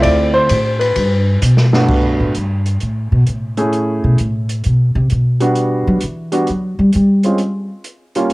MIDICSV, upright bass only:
0, 0, Header, 1, 2, 480
1, 0, Start_track
1, 0, Key_signature, 1, "major"
1, 0, Tempo, 459067
1, 42, Time_signature, 4, 2, 24, 8
1, 8712, End_track
2, 0, Start_track
2, 0, Title_t, "Upright bass"
2, 0, Program_c, 0, 32
2, 47, Note_on_c, 0, 38, 78
2, 511, Note_off_c, 0, 38, 0
2, 526, Note_on_c, 0, 45, 83
2, 992, Note_off_c, 0, 45, 0
2, 1008, Note_on_c, 0, 43, 78
2, 1473, Note_off_c, 0, 43, 0
2, 1486, Note_on_c, 0, 47, 79
2, 1953, Note_off_c, 0, 47, 0
2, 2301, Note_on_c, 0, 45, 69
2, 2449, Note_off_c, 0, 45, 0
2, 2468, Note_on_c, 0, 43, 61
2, 2906, Note_off_c, 0, 43, 0
2, 2951, Note_on_c, 0, 45, 57
2, 3254, Note_off_c, 0, 45, 0
2, 3262, Note_on_c, 0, 47, 80
2, 3410, Note_off_c, 0, 47, 0
2, 3437, Note_on_c, 0, 45, 59
2, 4185, Note_off_c, 0, 45, 0
2, 4224, Note_on_c, 0, 47, 76
2, 4371, Note_off_c, 0, 47, 0
2, 4392, Note_on_c, 0, 45, 65
2, 4828, Note_off_c, 0, 45, 0
2, 4871, Note_on_c, 0, 47, 66
2, 5175, Note_off_c, 0, 47, 0
2, 5179, Note_on_c, 0, 48, 84
2, 5329, Note_off_c, 0, 48, 0
2, 5353, Note_on_c, 0, 47, 66
2, 6102, Note_off_c, 0, 47, 0
2, 6141, Note_on_c, 0, 54, 85
2, 6289, Note_off_c, 0, 54, 0
2, 6304, Note_on_c, 0, 52, 72
2, 6743, Note_off_c, 0, 52, 0
2, 6791, Note_on_c, 0, 54, 63
2, 7092, Note_off_c, 0, 54, 0
2, 7097, Note_on_c, 0, 55, 83
2, 7246, Note_off_c, 0, 55, 0
2, 7271, Note_on_c, 0, 55, 71
2, 8017, Note_off_c, 0, 55, 0
2, 8712, End_track
0, 0, End_of_file